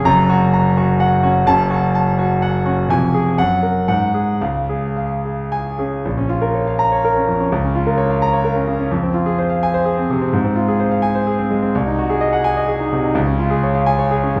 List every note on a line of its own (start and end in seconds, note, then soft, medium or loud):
0.04 1.43 F#1 medium
0.04 1.43 F#2 loud
0.04 0.44 A#5 loud
0.30 0.67 F#4 medium
0.54 0.91 A#5 medium
0.77 1.14 F#4 medium
1.00 1.38 F#5 medium
1.23 1.42 C#4 medium
1.23 1.47 F#4 medium
1.46 2.85 F#1 medium
1.46 2.85 F#2 medium
1.46 1.85 A5 loud
1.71 2.09 F#4 medium
1.95 2.33 A5 medium
2.18 2.56 F#4 medium
2.42 2.80 F#5 medium
2.66 2.85 C#4 medium
2.66 2.90 F#4 medium
2.89 3.36 F1 medium
2.89 3.37 F2 medium
2.89 3.29 G#5 loud
3.14 3.38 G#4 medium
3.38 3.87 F#2 medium
3.38 3.78 F#5 loud
3.63 3.88 A#4 medium
3.88 4.40 G#2 medium
3.88 4.30 F#5 medium
4.14 4.41 G#4 medium
4.41 6.01 C#2 medium
4.41 4.86 F5 medium
4.69 5.14 G#4 medium
4.96 5.41 F5 medium
5.25 5.69 G#4 medium
5.52 5.95 G#5 medium
5.79 6.00 C#4 medium
5.79 6.05 G#4 medium
6.05 7.47 A#1 medium
6.17 6.37 C#4 medium
6.29 6.49 F4 medium
6.42 6.61 A#4 medium
6.55 6.74 C#5 medium
6.67 6.86 F5 medium
6.79 6.98 A#5 medium
6.92 7.11 C#5 medium
7.05 7.23 A#4 medium
7.16 7.35 C#4 medium
7.27 7.46 F2 medium
7.40 7.51 C#4 medium
7.52 8.89 C#2 medium
7.64 7.82 C#4 medium
7.75 7.94 F4 medium
7.87 8.06 A#4 medium
7.98 8.17 C#5 medium
8.11 8.29 F5 medium
8.22 8.41 A#5 medium
8.33 8.52 C#5 medium
8.44 8.63 A#4 medium
8.56 8.75 C#4 medium
8.67 8.87 C#3 medium
8.79 8.91 C#4 medium
8.91 10.29 F2 medium
9.03 9.22 C4 medium
9.14 9.33 F4 medium
9.26 9.45 G#4 medium
9.39 9.58 C5 medium
9.50 9.69 F5 medium
9.63 9.82 G#5 medium
9.74 9.93 C5 medium
9.85 10.05 G#4 medium
9.97 10.17 C4 medium
10.10 10.29 C3 medium
10.22 10.33 C4 medium
10.33 11.70 G#2 medium
10.45 10.63 C4 medium
10.56 10.75 F4 medium
10.68 10.87 G#4 medium
10.80 10.99 C5 medium
10.91 11.11 F5 medium
11.02 11.22 G#5 medium
11.15 11.34 C5 medium
11.27 11.46 G#4 medium
11.39 11.58 C4 medium
11.50 11.69 G#3 medium
11.62 11.74 C4 medium
11.75 13.13 C2 medium
11.87 12.05 D#4 medium
11.98 12.17 F#4 medium
12.10 12.28 G#4 medium
12.21 12.40 D#5 medium
12.33 12.52 F#5 medium
12.44 12.64 G#5 loud
12.57 12.76 D#5 medium
12.68 12.88 G#4 medium
12.80 12.99 D#4 medium
12.93 13.11 C3 medium
13.04 13.16 D#4 medium
13.15 14.40 C#2 medium
13.27 13.46 C#4 medium
13.39 13.59 F4 medium
13.50 13.70 G#4 medium
13.63 13.83 C#5 medium
13.75 13.94 F5 medium
13.86 14.06 G#5 loud
13.99 14.19 C#5 medium
14.11 14.31 G#4 medium
14.23 14.40 C#4 medium
14.36 14.40 G#2 medium